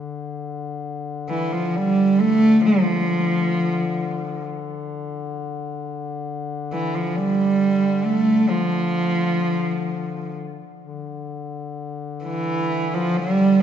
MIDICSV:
0, 0, Header, 1, 3, 480
1, 0, Start_track
1, 0, Key_signature, -1, "minor"
1, 0, Tempo, 500000
1, 13080, End_track
2, 0, Start_track
2, 0, Title_t, "Cello"
2, 0, Program_c, 0, 42
2, 1245, Note_on_c, 0, 52, 72
2, 1465, Note_on_c, 0, 53, 70
2, 1479, Note_off_c, 0, 52, 0
2, 1690, Note_on_c, 0, 55, 81
2, 1705, Note_off_c, 0, 53, 0
2, 2117, Note_on_c, 0, 57, 94
2, 2131, Note_off_c, 0, 55, 0
2, 2550, Note_off_c, 0, 57, 0
2, 2555, Note_on_c, 0, 53, 78
2, 4264, Note_off_c, 0, 53, 0
2, 6461, Note_on_c, 0, 52, 72
2, 6672, Note_on_c, 0, 53, 69
2, 6686, Note_off_c, 0, 52, 0
2, 6878, Note_on_c, 0, 55, 85
2, 6892, Note_off_c, 0, 53, 0
2, 7728, Note_on_c, 0, 57, 83
2, 7743, Note_off_c, 0, 55, 0
2, 8158, Note_on_c, 0, 53, 80
2, 8172, Note_off_c, 0, 57, 0
2, 9915, Note_off_c, 0, 53, 0
2, 11758, Note_on_c, 0, 52, 76
2, 12428, Note_on_c, 0, 53, 78
2, 12442, Note_off_c, 0, 52, 0
2, 12647, Note_on_c, 0, 55, 91
2, 12661, Note_off_c, 0, 53, 0
2, 13080, Note_off_c, 0, 55, 0
2, 13080, End_track
3, 0, Start_track
3, 0, Title_t, "Duduk"
3, 0, Program_c, 1, 69
3, 0, Note_on_c, 1, 50, 46
3, 10212, Note_off_c, 1, 50, 0
3, 10375, Note_on_c, 1, 50, 43
3, 13080, Note_off_c, 1, 50, 0
3, 13080, End_track
0, 0, End_of_file